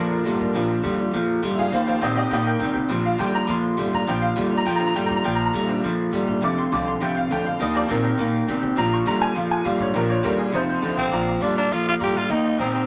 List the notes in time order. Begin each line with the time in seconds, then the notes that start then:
Already playing: F2 A#2 F3 D4 A#4
0.23 G2 A#2 D3 G3 D4 F4
0.39 G#2 D4 F4
0.53 A#1 A#2 D3 F3 G3 C4
0.82 F2 A#2 D3 G3 D4 F4
0.96 D4 F4
1.11 F2 A#2 F3
1.42 G2 A#2 D3 G3 D4 F4
1.54 G#2 F4 E5
1.59 D4 G#4 F5
1.72 D#2 D#3 A#3 C5 F5
1.87 F3 G3 C4 C5 F5
2.01 A#2 D#3 G3 C4 G4 D#5
2.15 C4 G4 D#5
2.30 A#2 D#3 A#3 G4 D#5
2.46 A#4 G5
2.59 C3 D#3 G3 C4 G4
2.73 C3 C4 G4
2.89 A#1 A#2 D3 F3 G3 C4
3.05 F5
3.17 F2 A#2 D3 G3 D4 F4 G5
3.32 D4 F4 A#5
3.45 F2 A#2 F3 B5
3.50 C6
3.77 G2 A#2 D3 G3 D4 F4
3.92 G#2 D4 F4 A#5
4.07 A#1 A#2 D3 F3 G3 C4 G5
4.22 F5
4.35 F2 A#2 D3 G3 D4 F4
4.50 D4 F4
4.57 A#5
4.66 F2 A#2 F3 G5
4.76 D3 G3 C4 A#5
4.86 A#5
4.94 G2 A#2 D3 G3 D4 F4 G5
5.06 F4 A#5
5.10 G#2 D4
5.16 A#5
5.24 A#1 A#2 F3 G5
5.35 A#5
5.41 A5
5.45 A#5
5.52 F2 A#2 D3 G3 D4 F4
5.67 D3 G3 C4 D4 F4
5.82 F2 A#2 F3
6.11 G2 A#2 D3 G3 D4 F4
6.26 G#2 D4 F4
6.41 F1 F2 C3 D3 G3 A3 D6
6.58 C6
6.71 C2 F2 D3 A3 C4 F4 D6
6.86 C4 F4 C6
7.00 C2 F2 A2 C3 D3 G3 A3 G5
7.17 F5
7.29 D2 F2 D3 A3 C4 F4 G5
7.44 F2 C4 F4 F5
7.59 D#2 D#3 A#3 D#5
7.74 F3 G3 C4 D5
7.88 A#2 D#3 G3 C4 G4 A#4
8.02 C4 G4
8.17 A#2 D#3 A#3
8.47 C3 D#3 G3 C4 G4
8.61 C3 C4 G4
8.75 A#1 A#2 D3 F3 G3 C4 A#5
8.93 C#6
9.05 F2 A#2 D3 G3 D4 F4 A#5
9.22 G#5
9.35 F2 A#2 F3 F5
9.51 G#5
9.64 G2 A#2 D3 G3 D4 F4 F5
9.78 G#2 D4 F4 C#5
9.93 A#1 A#2 D3 F3 G3 C4 A#4
10.10 C#5
10.23 D#2 A#2 D3 G3 D4 F4 A#4
10.38 D4 F4 G#4
10.52 F1 F2 C3 G3 A3 D#4 C5
10.81 D2 F2 D3 A3 C4 F4
10.97 C2 C4
11.11 A#1 A#2 F3 D5 F5 A#5
11.27 D5 F5 A#5
11.41 F2 A#2 D3 G3 D4 F4 D5 F5 C6
11.55 D4 F4 D5 F5 A#5
11.70 F2 A#2 F3 F4 D5 F5 C6
11.86 F4 D5 F5 C6
11.99 G2 A#2 D3 G3 D4 F4 D5 F5 A#5
12.03 G4
12.13 G#2 D4 F4 D5 F5 A#5
12.29 D#2 D#3 A#3 D#4 D#5 G5 A#5
12.44 D#5 G5 C6
12.58 A#2 D#3 G3 C4 G4 D#5 G5 A#5
12.73 C4 G4 D#5 G5 A#5